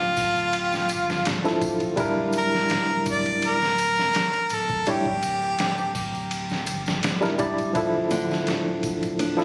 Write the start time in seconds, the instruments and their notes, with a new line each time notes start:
Already playing: analog synth bass D1, harmonica F4
0.17 kick, open hi-hat, tambourine
0.36 tambourine
0.52 ride, tambourine
0.73 snare, tambourine
0.89 analog synth bass G1, ride, tambourine
1.10 snare, tambourine
1.25 analog synth bass D1, snare, ride, tambourine
1.44 tine electric piano F3 D4 E4 A4, snare, tambourine
1.61 kick, ride, tambourine
1.80 ride, tambourine
1.96 analog synth bass D1, tine electric piano G3 D4 E4 A#4, kick, ride, tambourine
2.33 ride, tambourine
2.37 harmonica A#4
2.51 snare, tambourine
2.69 analog synth bass D1, snare, ride, tambourine
3.06 kick, ride, tambourine
3.10 harmonica D5
3.25 ride, tambourine
3.42 ride, tambourine
3.47 harmonica A#4
3.62 snare, tambourine
3.78 ride, tambourine
3.96 snare, tambourine
4.13 snare, ride, tambourine
4.33 ride, tambourine
4.50 analog synth bass D1, ride, tambourine
4.54 harmonica A4
4.69 kick, tambourine
4.86 analog synth bass D1, tine electric piano G3 D4 E4 C#5, ride, tambourine
4.90 harmonica G4
5.06 kick
5.23 ride, tambourine
5.42 tambourine
5.59 analog synth bass D1, snare, ride, tambourine
5.78 tambourine
5.95 kick, open hi-hat, tambourine
6.15 tambourine
6.31 ride, tambourine
6.50 snare, tambourine
6.66 analog synth bass G1, ride, tambourine
6.86 snare, tambourine
7.03 analog synth bass D1, snare, ride, tambourine
7.21 tine electric piano G3 D4 E4 A#4, snare, tambourine
7.38 tine electric piano G3 D4 E4 D5, kick, ride, tambourine
7.58 ride, tambourine
7.73 analog synth bass D1, tine electric piano F3 D4 E4, kick, ride, tambourine
7.77 tine electric piano A4
8.11 nylon-string guitar D3, ride, tambourine
8.31 snare, tambourine
8.47 analog synth bass D1, snare, ride, tambourine
8.83 kick, ride, tambourine
9.03 ride, tambourine
9.19 nylon-string guitar D4, ride, tambourine
9.37 tine electric piano F3 D4 E4 A4, snare, tambourine